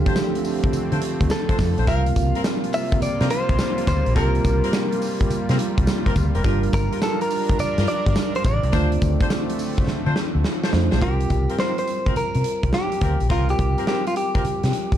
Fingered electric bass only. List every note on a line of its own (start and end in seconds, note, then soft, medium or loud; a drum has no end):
0.73 muted fingered electric bass stroke soft
0.92 1.00 D3 loud
1.21 1.28 D2 medium
1.59 1.74 F2 medium
1.78 1.85 A#1 medium
1.88 2.10 C2 loud
2.16 2.31 C2 loud
3.02 muted fingered electric bass stroke soft
3.21 3.28 C3 loud
3.49 3.57 C2 medium
3.87 4.03 D2 medium
4.07 4.14 A#1 medium
4.16 4.39 C2 loud
4.45 4.60 C2 medium
5.30 muted fingered electric bass stroke medium
5.49 5.57 C3 medium
5.78 5.85 C2 medium
6.16 6.31 D2 medium
6.35 6.43 F1 medium
6.45 6.67 G1 loud
6.73 6.88 G1 medium
7.59 muted fingered electric bass stroke soft
7.78 7.85 G2 medium
8.07 8.14 G1 loud
8.45 8.60 A1 medium
8.64 8.71 C2 loud
8.73 8.96 D2 loud
9.02 9.17 D2 loud
9.88 muted fingered electric bass stroke soft
10.07 10.14 D3 medium
10.35 10.42 D2 medium
10.73 10.88 F2 medium
10.92 11.00 A#1 medium
11.02 11.24 C2 medium
11.30 11.46 C2 medium
12.16 muted fingered electric bass stroke soft
12.35 12.43 C3 medium
12.63 12.71 C2 medium
13.02 13.17 D2 medium
13.21 13.28 A#1 medium
13.30 13.53 C2 loud
13.59 13.74 C2 medium
14.45 muted fingered electric bass stroke soft
14.64 14.71 C3 medium
14.92 14.98 C2 medium